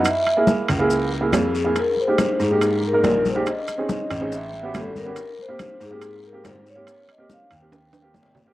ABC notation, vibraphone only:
X:1
M:4/4
L:1/8
Q:1/4=141
K:Ab
V:1 name="Vibraphone"
_f2 z4 A2 | B c2 A2 B B c | ^d2 d z =e2 =A B- | B c2 A2 B c d- |
d z f g4 z |]